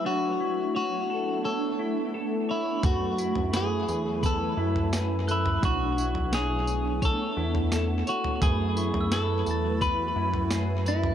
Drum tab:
TB |----------------|x-x-x-x-x---x-x-|x-x-x-x-x---x-x-|x-x-x-x-x---x-x-|
SD |----------------|----o-------o---|----o-------o---|----o-------o---|
FT |----------------|o--o-------o---o|o--o-------o---o|o--o-------o---o|
BD |----------------|o-------o-------|o-------o-------|o-------o-------|